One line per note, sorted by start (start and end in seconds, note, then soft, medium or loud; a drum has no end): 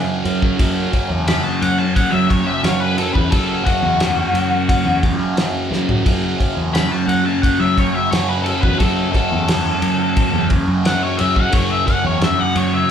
0.00 0.22 F#2 medium
0.00 6.07 F#2 medium
0.00 0.23 C#3 medium
0.00 0.25 F#3 loud
0.00 6.06 F#3 medium
0.23 0.57 F#2 medium
0.23 0.52 F#2 medium
0.23 0.41 C#3 medium
0.23 0.39 F#3 medium
0.23 ride medium
0.40 0.57 C#3 medium
0.40 0.59 F#3 medium
0.40 kick medium
0.57 0.91 F#2 medium
0.57 0.87 F#2 medium
0.57 0.91 C#3 loud
0.57 0.93 F#3 loud
0.57 kick loud
0.57 ride medium
0.92 1.25 F#2 medium
0.92 1.09 C#3 medium
0.92 1.08 F#3 medium
0.92 kick medium
0.92 ride medium
1.08 1.37 E2 medium
1.08 1.25 C#3 medium
1.08 1.27 F#3 medium
1.25 2.28 F#2 medium
1.25 1.43 C#3 loud
1.25 1.41 F#3 loud
1.25 1.44 B5 loud
1.25 snare loud
1.25 ride loud
1.42 1.79 C#3 medium
1.42 1.77 F#3 medium
1.42 1.61 A5 medium
1.61 1.89 F#2 loud
1.61 1.78 F#5 medium
1.61 ride medium
1.77 2.11 C#3 medium
1.77 2.10 F#3 medium
1.77 1.95 A5 medium
1.95 2.12 F#5 loud
1.95 kick loud
1.95 ride medium
2.10 2.29 C#3 medium
2.10 2.31 F#3 medium
2.10 2.40 F#3 medium
2.10 2.30 E5 medium
2.29 2.63 F#2 medium
2.29 2.46 C#3 medium
2.29 2.45 F#3 medium
2.29 2.47 C#5 medium
2.29 kick medium
2.29 ride medium
2.45 2.63 C#3 medium
2.45 2.64 F#3 medium
2.45 2.65 E5 medium
2.63 3.05 F#2 loud
2.63 2.97 F#2 medium
2.63 2.97 C#3 loud
2.63 3.00 F#3 loud
2.63 2.80 C#5 medium
2.63 snare loud
2.63 ride loud
2.80 2.97 B4 medium
2.98 3.30 F#2 medium
2.98 3.16 C#3 medium
2.98 3.13 F#3 medium
2.98 3.13 A4 medium
2.98 ride medium
3.14 3.29 E2 medium
3.14 3.30 C#3 medium
3.14 3.32 F#3 medium
3.14 3.31 B4 medium
3.14 kick medium
3.31 3.65 F#2 medium
3.31 3.60 F#2 medium
3.31 3.65 C#3 loud
3.31 3.67 F#3 loud
3.31 3.65 A4 loud
3.31 kick loud
3.31 ride medium
3.65 4.00 F#2 medium
3.65 3.84 C#3 medium
3.65 3.83 F#3 medium
3.65 4.99 F#4 loud
3.65 kick medium
3.65 ride medium
3.83 4.24 E2 medium
3.83 4.00 C#3 medium
3.83 4.03 F#3 medium
4.00 5.02 F#2 medium
4.00 4.19 C#3 loud
4.00 4.18 F#3 loud
4.00 snare loud
4.00 ride medium
4.18 4.52 C#3 medium
4.18 4.50 F#3 medium
4.33 4.75 F#2 medium
4.33 ride medium
4.51 4.85 C#3 medium
4.51 4.84 F#3 medium
4.69 kick loud
4.69 ride medium
4.84 5.13 E2 medium
4.84 5.02 C#3 soft
4.84 5.04 F#3 medium
5.02 5.36 F#2 medium
5.02 5.19 C#3 medium
5.02 5.18 F#3 medium
5.02 kick medium
5.02 ride medium
5.18 5.47 F#2 medium
5.18 5.36 C#3 medium
5.18 5.37 F#3 medium
5.36 5.70 F#2 medium
5.36 5.69 C#3 loud
5.36 5.72 F#3 loud
5.36 snare loud
5.36 ride medium
5.70 6.03 F#2 medium
5.70 5.99 F#2 medium
5.70 5.87 C#3 medium
5.70 5.86 F#3 medium
5.70 snare medium
5.87 6.04 C#3 medium
5.87 6.06 F#3 medium
5.87 floor tom medium
6.04 6.39 F#2 loud
6.04 6.33 F#2 medium
6.04 6.39 C#3 loud
6.04 6.41 F#3 loud
6.04 12.91 F#3 medium
6.04 kick loud
6.04 ride medium
6.08 12.91 F#2 medium
6.39 6.73 F#2 medium
6.39 6.56 C#3 medium
6.39 6.54 F#3 medium
6.39 kick medium
6.39 ride medium
6.54 6.84 E2 medium
6.54 6.72 C#3 medium
6.54 6.74 F#3 medium
6.73 7.76 F#2 medium
6.73 6.90 C#3 loud
6.73 6.88 F#3 loud
6.73 6.92 B5 loud
6.73 snare loud
6.73 ride medium
6.89 7.25 C#3 medium
6.89 7.24 F#3 medium
6.89 7.07 A5 medium
7.07 7.35 F#2 loud
7.07 7.25 F#5 medium
7.07 ride medium
7.24 7.60 C#3 medium
7.24 7.59 F#3 medium
7.24 7.42 A5 loud
7.42 7.59 F#5 medium
7.42 kick loud
7.42 ride medium
7.59 7.77 C#3 medium
7.59 7.79 F#3 medium
7.59 7.87 F#3 medium
7.59 7.77 E5 medium
7.77 8.11 F#2 medium
7.77 7.96 C#3 medium
7.77 7.94 F#3 medium
7.77 7.94 C#5 medium
7.77 kick medium
7.77 ride medium
7.94 8.12 C#3 medium
7.94 8.13 F#3 medium
7.94 8.11 E5 medium
8.11 8.46 F#2 medium
8.11 8.53 F#2 medium
8.11 8.46 C#3 medium
8.11 8.48 F#3 loud
8.11 8.28 C#5 medium
8.11 snare loud
8.11 ride medium
8.29 8.42 B4 medium
8.42 8.79 F#2 medium
8.42 8.61 A4 medium
8.42 ride medium
8.47 8.63 C#3 medium
8.47 8.63 F#3 medium
8.61 8.77 E2 medium
8.61 8.80 C#3 medium
8.61 8.81 F#3 medium
8.61 8.78 B4 medium
8.61 kick medium
8.79 9.14 F#2 loud
8.79 9.07 F#2 medium
8.79 9.14 C#3 loud
8.79 9.15 F#3 medium
8.79 9.11 A4 loud
8.79 kick loud
8.79 ride medium
9.13 9.47 F#2 medium
9.13 9.31 C#3 medium
9.13 9.30 F#3 medium
9.13 10.46 A4 medium
9.13 kick medium
9.13 ride medium
9.30 9.73 E2 medium
9.30 9.46 C#3 medium
9.30 9.48 F#3 medium
9.47 10.49 F#2 loud
9.47 9.66 C#3 loud
9.47 9.65 F#3 loud
9.47 snare loud
9.47 ride loud
9.65 10.00 C#3 medium
9.65 9.99 F#3 medium
9.82 10.23 F#2 medium
9.82 ride medium
9.99 10.33 C#3 medium
9.99 10.32 F#3 medium
10.17 kick loud
10.17 ride medium
10.32 10.60 E2 loud
10.32 10.49 C#3 medium
10.32 10.51 F#3 medium
10.50 10.84 F#2 medium
10.50 10.68 C#3 medium
10.50 10.67 F#3 medium
10.50 kick medium
10.50 ride medium
10.68 10.95 F#2 medium
10.68 10.84 C#3 medium
10.68 10.85 F#3 medium
10.84 11.18 F#2 loud
10.84 11.18 C#3 medium
10.84 11.21 F#3 loud
10.84 11.03 F#5 loud
10.84 snare loud
10.84 ride medium
11.03 11.19 C#5 medium
11.17 11.51 F#2 medium
11.17 11.48 F#2 medium
11.17 11.36 C#3 medium
11.17 11.34 F#3 medium
11.17 11.35 E5 medium
11.17 ride medium
11.34 11.51 C#3 medium
11.34 11.53 F#3 medium
11.34 11.53 F#5 loud
11.34 kick medium
11.51 11.86 F#2 loud
11.51 11.81 F#2 loud
11.51 11.86 C#3 loud
11.51 11.88 F#3 loud
11.51 11.70 C#5 loud
11.51 kick loud
11.51 ride medium
11.70 11.86 E5 medium
11.86 12.19 F#2 medium
11.86 12.04 C#3 medium
11.86 12.03 F#3 medium
11.86 12.04 F#5 medium
11.86 kick medium
11.86 ride medium
12.03 12.32 E2 medium
12.03 12.19 C#3 medium
12.03 12.21 F#3 medium
12.03 12.23 C#5 medium
12.19 12.91 F#2 medium
12.19 12.38 C#3 loud
12.19 12.37 F#3 loud
12.19 snare loud
12.19 ride medium
12.24 12.40 E5 medium
12.38 12.73 C#3 medium
12.38 12.72 F#3 medium
12.38 12.56 F#5 medium
12.55 12.83 F#2 loud
12.55 12.74 C#5 medium
12.55 ride medium
12.72 12.91 C#3 medium
12.72 12.91 F#3 medium
12.72 12.90 E5 medium